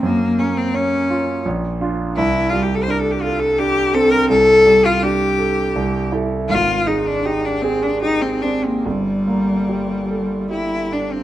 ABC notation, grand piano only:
X:1
M:3/4
L:1/8
Q:1/4=82
K:Cmix
V:1 name="Grand piano"
^F,, ^A, ^C ^E B,,, [D=F] | C,, G, D A D C | C,, G, D A C,, [EA] | _A,,, _A, G _A G C |
G,,, B, G A G D |]